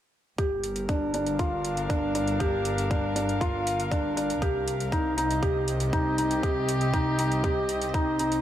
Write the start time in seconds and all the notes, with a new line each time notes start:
0.38 G1 G3 G4, kick, closed hi-hat
0.62 A#4, closed hi-hat
0.76 closed hi-hat
0.89 D4, kick, closed hi-hat
1.14 D4, closed hi-hat
1.22 F5
1.27 closed hi-hat
1.39 F4, kick, closed hi-hat
1.65 closed hi-hat
1.77 closed hi-hat
1.89 D4, kick, closed hi-hat
2.15 D4, closed hi-hat
2.28 closed hi-hat
2.40 G4, kick, closed hi-hat
2.65 closed hi-hat
2.78 closed hi-hat
2.90 D4, kick, closed hi-hat
3.16 D4, closed hi-hat
3.29 closed hi-hat
3.41 F4, kick, closed hi-hat
3.67 closed hi-hat
3.80 closed hi-hat
3.91 D4, kick, closed hi-hat
4.17 D4, closed hi-hat
4.30 closed hi-hat
4.42 C2 C3 G4, kick, closed hi-hat
4.68 closed hi-hat
4.77 C4, closed hi-hat
4.92 D#4, kick, closed hi-hat
5.17 D#4, closed hi-hat
5.26 D#5
5.31 closed hi-hat
5.42 G4, kick, closed hi-hat
5.68 closed hi-hat
5.79 G4, closed hi-hat
5.93 D#4, kick, closed hi-hat
6.18 D#4, closed hi-hat
6.31 closed hi-hat
6.43 G4, kick, closed hi-hat
6.69 closed hi-hat
6.81 closed hi-hat
6.94 D#4, kick, closed hi-hat
7.19 D#4, closed hi-hat
7.32 closed hi-hat
7.44 G4, kick, closed hi-hat
7.69 closed hi-hat
7.82 closed hi-hat
7.94 D#4, kick, closed hi-hat
8.19 D#4, closed hi-hat
8.32 closed hi-hat